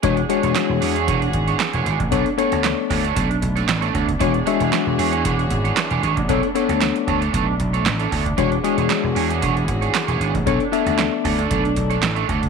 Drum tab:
HH |xxxxx-oxxxxxxxxx|xxxxx-oxxxxxxxxx|xxxxx-oxxxxxxxxx|xxxxxxxxx-xxxxox|
CP |----x-------x---|----x-------x---|----x-------x---|----x-------x---|
SD |----o-------o---|----o-------o---|----o-------o---|----o-------o---|
BD |o-------o-o----o|o-----o-o-o---oo|o-------o-o----o|o-----o-o-o---oo|

HH |xxxxx-oxxxxxxxxx|xxxxx-oxxxxxxxxx|
CP |----x-------x---|----x-------x---|
SD |----o-------o---|----o-------o---|
BD |o-------o-o----o|o-----o-o-o---oo|